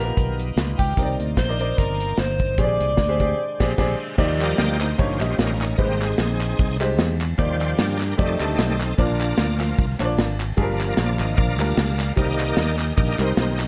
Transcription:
Already playing: A#1 G3 B3 D#4 F4 A#4
0.00 B3 F4 G4
0.04 A#4
0.17 B1, kick, closed hi-hat
0.40 closed hi-hat
0.56 C#2, snare, closed hi-hat
0.79 C#2 G4, kick, closed hi-hat
0.97 C2 C3 A#3 C4 D#4 A#4 C5 D5, kick, closed hi-hat
1.03 D5
1.19 D2, closed hi-hat
1.37 A#1 C5, kick, snare, closed hi-hat
1.49 C4 D#4 A#4 D5
1.59 C4 D#4 A#4 D5, closed hi-hat
1.78 G1 A#4, kick, closed hi-hat
2.00 closed hi-hat
2.17 G1 C5, snare, closed hi-hat
2.40 kick, closed hi-hat
2.58 A#1 A#2 G#3 C4 D4 G4 G#4 C5 D5, kick, closed hi-hat
2.64 D5
2.80 C2, closed hi-hat
2.97 D2, kick, snare, closed hi-hat
3.08 C4 G4 G#4 C5
3.20 C4 G4 G#4 D5, kick, closed hi-hat
3.60 A#1 C4 G4 G#4 D5, kick, snare, crash
3.78 A#1 C4 G4 G#4 D5, kick, snare, crash
4.18 D#2 D#3 F3 G3 A#3 D#4 G4 D5, kick, crash
4.41 G4 A#4 D5, clap, ride
4.58 D2, snare, ride
4.80 D#4 C5, snare, clap, ride
4.98 G1 G2 F3 G3 A#3 C#4 D#4 G4 C#5, kick, ride
5.20 A#1 A#3 D#4 G4 D#5, clap, ride
5.38 A1 C#4 D#4 A#4, snare, ride
5.61 snare, clap, ride
5.78 G#1 G#2 G3 G#3 A#3 C4 D#4 G4 B4, kick, ride
5.84 C5
6.01 C4 D#4 G#4, clap, ride
6.18 A#1, snare, ride
6.40 clap, ride
6.59 C2, kick, ride
6.80 G#3 D#4 G4 C5, clap, ride
6.98 E2, snare, ride
7.21 clap, ride
7.38 D#2 D#3 F3 G3 A#3 D#4 G4 C5 D5, kick, ride
7.61 clap, ride
7.79 G2 D4 G4 A#4, snare, ride
8.00 snare, clap, ride
8.17 F2 D#3 G3 A3 C4 D#4 G4 A4 D5, kick, ride
8.40 D2 A3 D#4 G4 A4, clap, ride
8.58 B1, snare, ride
8.81 snare, clap, ride
8.98 A#1 A#2 A#3 D4 F4 A#4 D5, kick, ride
9.21 F4 A#4 D5, clap, ride
9.38 D2, snare, ride
9.60 F3 A#3 D4, snare, clap, ride
9.78 C2, kick, ride
9.99 A#1 A#3 D4 F4 C#5, clap, ride
10.05 D5
10.18 G#1, snare, ride
10.40 clap, ride
10.57 G1 G2 F3 G3 A#3 D4 F4 G#4, kick, ride
10.63 A#4
10.80 A#4, clap, ride
10.97 A#1 D5, snare, ride
11.19 G#1 D#5, clap, ride
11.37 A#1 F3 A#3 D4 A#4 D5 F5, kick, ride
11.59 D2 G3 D4 F4 A#4, clap, ride
11.77 C#2, snare, ride
11.99 snare, clap, ride
12.16 C2 C3 D#3 G3 A#3 C4 D#4 G4 A#4 D5 D#5, kick, ride
12.39 clap, ride
12.56 D#2, snare, ride
12.79 snare, clap, ride
12.96 A#1 D#3 A#3 D4 G4 A#4 D#5, kick, ride
13.19 C2 G3 C4 D#4 G4 A#4 C5, clap, ride
13.37 B1, snare, ride
13.59 snare, clap, ride

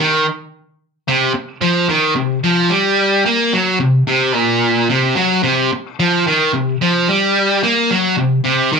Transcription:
0.00 D#3
1.08 C3
1.34 muted distorted electric guitar stroke
1.62 F3
1.89 D#3
2.15 C3
2.44 F3
2.69 G3
3.26 A#3
3.53 F#3
3.80 C3
4.07 C3
4.35 A#2
4.90 C3
5.16 F#3
5.43 C3
5.73 muted distorted electric guitar stroke
6.00 F3
6.27 D#3
6.54 C3
6.82 F3
7.09 G3
7.64 A#3
7.91 F#3
8.17 C3
8.44 C3
8.72 D#3

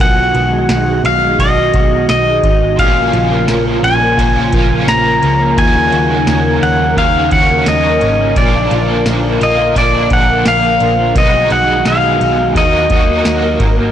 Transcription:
0.00 B1 B2 D#3 G#3 B3 F#4 F#5, kick, ride
0.17 D#4
0.34 B1 F#4, ride
0.52 G#3
0.69 B1 D#4, snare, ride, tambourine
0.87 G#3
1.04 B1 D#4 F5, ride
1.22 G#3
1.39 B1 B2 F#4 D#5, kick, ride
1.56 D#4
1.74 B1 F#4, kick, ride
1.91 G#3
2.09 B1 D#4 D#5, snare, ride, tambourine
2.27 G#3
2.43 G#1 D#4, kick, ride
2.61 G#3
2.77 A#1 A#2 C#3 F3 A#3 F4 F5, kick, ride
2.81 C#4 F4
2.96 C#4
3.13 A#1 F4, ride
3.31 A#3
3.48 A#1 C#4, snare, ride, tambourine
3.66 A#3
3.83 A#1 C#4 G#5, ride
4.00 A#3
4.18 A#1 A#2 F3 A#3 C#4 F4, kick, ride
4.35 C#4
4.53 A#1 A#3 C#4 F4, kick, ride
4.70 A#3
4.87 A#1 C#4 A#5, snare, ride, tambourine
5.05 A#3
5.23 C#2 C#4, ride
5.40 A#3
5.57 D#2 D#3 F#3 A#3 D#4 F#4 G#5, kick, ride
5.61 C#4 F#4
5.75 C#4
5.92 D#2 F#4, ride
6.10 A#3
6.27 D#2 C#4, snare, ride, tambourine
6.45 A#3
6.62 D#2 C#4 F#5, ride
6.80 A#3
6.97 D#2 D#3 A#3 C#4 F#4 F5, kick, ride
7.15 C#4
7.31 D#2 A#3 C#4 F#4 F#5, kick, ride
7.49 A#3
7.66 D#2 C#4 D#5, snare, ride, tambourine
7.84 A#3
8.01 G#1 C#4, ride
8.19 A#3
8.36 A#1 A#2 D3 F3 A#3 D4 F4 D5, kick, ride
8.54 D4
8.71 A#1 F4, ride
8.88 A#3
9.06 A#1 D4, snare, ride, tambourine
9.23 A#3
9.40 A#1 A#3 F4 D#5, ride
9.59 A#3
9.75 A#1 A#2 F3 A#3 F4 D5, kick, ride
9.79 D4
9.93 D4
10.10 A#1 F#5, kick, ride
10.28 A#3
10.45 A#1 D4 F5, snare, ride, tambourine
10.63 A#3
10.80 A#1 D4, ride
10.98 A#3
11.15 B1 B2 D#3 G#3 B3 F#4 D#5, kick, ride
11.19 D#4 F#4
11.33 D#4
11.50 B1 F#4 F#5, ride
11.67 G#3
11.85 B1 D#4 F5, snare, ride, tambourine
12.02 G#3
12.20 B1 D#4, ride
12.38 G#3
12.55 D#2 D#3 F#3 A#3 D#4 F#4 D#5, kick, ride
12.72 D#4
12.89 D#2 A#3 D#4 F#4, kick, ride
13.07 A#3
13.24 D#2 D#4, snare, ride, tambourine
13.42 A#3
13.59 G#1 D#4, kick, ride
13.77 A#3

